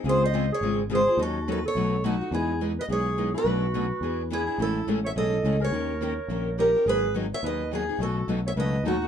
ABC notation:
X:1
M:4/4
L:1/8
Q:"Swing" 1/4=212
K:Bmix
V:1 name="Steel-string acoustic guitar"
^B d2 c2 z B2 | A2 B c3 F2 | [K:E] G2 z d c3 B- | B6 G2 |
A2 z e d3 c- | c6 ^A2 | B2 z e d2 G2 | A2 z e d2 F2 |]
V:2 name="Clarinet"
G ^B2 G2 z G2 | F2 F A3 D2 | [K:E] E2 z B G3 F- | F6 E2 |
E2 z c A3 ^A- | ^A6 =G2 | G2 z c B2 D2 | F2 z c B2 D2 |]
V:3 name="Steel-string acoustic guitar"
[C,G,^B,^EG] z [C,G,B,EG] z [C,G,B,EG] z [C,G,B,EG] [B,EG] | [D,F,CDA] z [D,F,CDA] z [B,,F,A,DF] z [B,,F,A,DF] [A,DF] | [K:E] [E,B,DG] z [E,B,DG] z [E,B,DG] z [E,B,DG] [B,DG] | [B,,F,A,=DF] z [B,,F,A,DF] z [E,B,DG] z [E,B,DG] [B,DG] |
[C,E,A,CG] z [C,E,A,CG] z [C,E,A,CG] z [C,E,A,CG] [A,CG] | [D,^A,C=G^A] z [D,A,CGA] z [D,A,CGA] z [D,A,CGA] [CGA] | [D,F,B,DG] z [D,F,B,DG] z [D,F,B,DG] z [D,F,B,DG] [B,DG] | [B,,F,A,DF] z [B,,F,A,DF] z [B,,F,A,DF] z [B,,F,A,DF] [A,DF] |]
V:4 name="Steel-string acoustic guitar"
[C,G,^B,^EG] z [C,G,B,EG] z [C,G,B,EG] z [C,G,B,EG] z | [D,F,CDA] z [D,F,CDA] z [B,,F,A,DFB] z [B,,F,A,DFB] z | [K:E] [E,G,B,DG] z [E,G,B,DG] z [E,G,B,DG] z [E,G,B,DG] z | [B,,F,A,=DFB] z [B,,F,A,DFB] z [E,B,DGB] z [E,B,DGB] z |
[E,G,CEA] z [E,G,CEA] z [E,G,CEA] z [E,G,CEA] z | [D,^A,C=G^A] z [D,A,CGA] z [D,A,CGA] z [D,A,CGA] z | [D,F,B,DG] z [D,F,B,DG] z [D,F,B,DG] z [D,F,B,DG] z | [B,,D,F,B,DA] z [B,,D,F,B,DA] z [B,,D,F,B,DA] z [B,,D,F,B,DA] z |]
V:5 name="Picked electric bass" clef=bass
C,,4 G,,,4 | D,,4 B,,,4 | [K:E] E,,4 B,,,4 | B,,,4 E,,4 |
A,,,2 A,,,2 B,,,2 C,,2 | D,,4 ^A,,,4 | G,,,4 D,,4 | B,,,2 B,,,2 C,,2 D,,2 |]